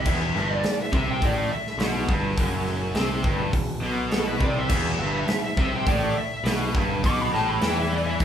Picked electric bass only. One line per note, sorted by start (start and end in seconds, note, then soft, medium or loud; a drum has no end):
0.05 0.32 E1 medium
0.35 0.62 G1 loud
0.92 1.19 C2 medium
1.22 1.49 A1 loud
1.49 muted picked electric bass stroke soft
1.78 2.06 B1 loud
2.09 2.36 G1 medium
2.38 2.92 F#1 medium
2.94 3.22 C2 medium
3.24 3.51 G1 medium
3.53 3.80 E1 medium
3.82 4.36 B1 loud
4.40 4.68 C2 medium
4.70 4.97 E1 medium
4.98 5.26 G1 loud
5.27 muted picked electric bass stroke soft
5.57 5.84 C2 loud
5.87 6.14 A1 medium
6.15 muted picked electric bass stroke soft
6.44 6.71 B1 medium
6.75 7.01 G1 medium
7.03 7.30 B1 loud
7.33 7.59 A1 loud
7.61 8.16 E2 medium
8.20 8.24 E1 loud